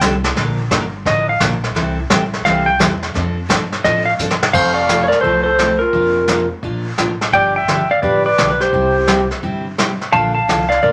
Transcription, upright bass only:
0, 0, Header, 1, 2, 480
1, 0, Start_track
1, 0, Key_signature, -1, "major"
1, 0, Tempo, 349040
1, 492, Time_signature, 4, 2, 24, 8
1, 15024, End_track
2, 0, Start_track
2, 0, Title_t, "Upright bass"
2, 0, Program_c, 0, 32
2, 17, Note_on_c, 0, 36, 92
2, 480, Note_off_c, 0, 36, 0
2, 500, Note_on_c, 0, 34, 86
2, 961, Note_off_c, 0, 34, 0
2, 975, Note_on_c, 0, 31, 84
2, 1438, Note_off_c, 0, 31, 0
2, 1450, Note_on_c, 0, 33, 92
2, 1915, Note_off_c, 0, 33, 0
2, 1931, Note_on_c, 0, 34, 90
2, 2395, Note_off_c, 0, 34, 0
2, 2412, Note_on_c, 0, 36, 97
2, 2875, Note_off_c, 0, 36, 0
2, 2889, Note_on_c, 0, 33, 82
2, 3353, Note_off_c, 0, 33, 0
2, 3369, Note_on_c, 0, 36, 85
2, 3832, Note_off_c, 0, 36, 0
2, 3845, Note_on_c, 0, 40, 103
2, 4310, Note_off_c, 0, 40, 0
2, 4330, Note_on_c, 0, 41, 96
2, 4792, Note_off_c, 0, 41, 0
2, 4807, Note_on_c, 0, 43, 93
2, 5270, Note_off_c, 0, 43, 0
2, 5288, Note_on_c, 0, 45, 87
2, 5746, Note_off_c, 0, 45, 0
2, 5754, Note_on_c, 0, 43, 97
2, 6223, Note_off_c, 0, 43, 0
2, 6248, Note_on_c, 0, 29, 93
2, 7013, Note_off_c, 0, 29, 0
2, 7209, Note_on_c, 0, 36, 78
2, 7974, Note_off_c, 0, 36, 0
2, 8161, Note_on_c, 0, 29, 91
2, 8930, Note_off_c, 0, 29, 0
2, 9120, Note_on_c, 0, 34, 83
2, 9530, Note_off_c, 0, 34, 0
2, 9611, Note_on_c, 0, 33, 81
2, 10016, Note_off_c, 0, 33, 0
2, 10078, Note_on_c, 0, 31, 98
2, 10465, Note_off_c, 0, 31, 0
2, 10563, Note_on_c, 0, 31, 79
2, 10972, Note_off_c, 0, 31, 0
2, 11046, Note_on_c, 0, 33, 77
2, 11454, Note_off_c, 0, 33, 0
2, 11538, Note_on_c, 0, 35, 83
2, 11942, Note_off_c, 0, 35, 0
2, 12008, Note_on_c, 0, 36, 97
2, 12778, Note_off_c, 0, 36, 0
2, 12972, Note_on_c, 0, 31, 80
2, 13741, Note_off_c, 0, 31, 0
2, 13934, Note_on_c, 0, 34, 95
2, 14318, Note_off_c, 0, 34, 0
2, 14417, Note_on_c, 0, 36, 75
2, 14825, Note_off_c, 0, 36, 0
2, 14895, Note_on_c, 0, 34, 80
2, 15024, Note_off_c, 0, 34, 0
2, 15024, End_track
0, 0, End_of_file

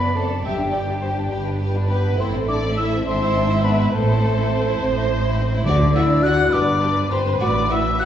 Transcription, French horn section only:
0, 0, Header, 1, 2, 480
1, 0, Start_track
1, 0, Key_signature, 1, "major"
1, 0, Tempo, 580833
1, 369, Time_signature, 6, 3, 24, 8
1, 6653, End_track
2, 0, Start_track
2, 0, Title_t, "French horn section"
2, 0, Program_c, 0, 60
2, 0, Note_on_c, 0, 59, 64
2, 117, Note_on_c, 0, 57, 55
2, 122, Note_off_c, 0, 59, 0
2, 228, Note_off_c, 0, 57, 0
2, 362, Note_on_c, 0, 55, 65
2, 1308, Note_off_c, 0, 55, 0
2, 1561, Note_on_c, 0, 59, 67
2, 1787, Note_off_c, 0, 59, 0
2, 1805, Note_on_c, 0, 60, 67
2, 1914, Note_off_c, 0, 60, 0
2, 2051, Note_on_c, 0, 62, 67
2, 2158, Note_off_c, 0, 62, 0
2, 2277, Note_on_c, 0, 64, 65
2, 2520, Note_off_c, 0, 64, 0
2, 2520, Note_on_c, 0, 60, 76
2, 2991, Note_on_c, 0, 59, 65
2, 3004, Note_off_c, 0, 60, 0
2, 3233, Note_on_c, 0, 57, 74
2, 3239, Note_off_c, 0, 59, 0
2, 4177, Note_off_c, 0, 57, 0
2, 4669, Note_on_c, 0, 62, 82
2, 4895, Note_off_c, 0, 62, 0
2, 4917, Note_on_c, 0, 64, 90
2, 5147, Note_on_c, 0, 66, 80
2, 5151, Note_off_c, 0, 64, 0
2, 5388, Note_on_c, 0, 62, 86
2, 5392, Note_off_c, 0, 66, 0
2, 5871, Note_on_c, 0, 60, 73
2, 5877, Note_off_c, 0, 62, 0
2, 6114, Note_off_c, 0, 60, 0
2, 6121, Note_on_c, 0, 62, 76
2, 6365, Note_on_c, 0, 64, 80
2, 6366, Note_off_c, 0, 62, 0
2, 6475, Note_off_c, 0, 64, 0
2, 6609, Note_on_c, 0, 66, 59
2, 6653, Note_off_c, 0, 66, 0
2, 6653, End_track
0, 0, End_of_file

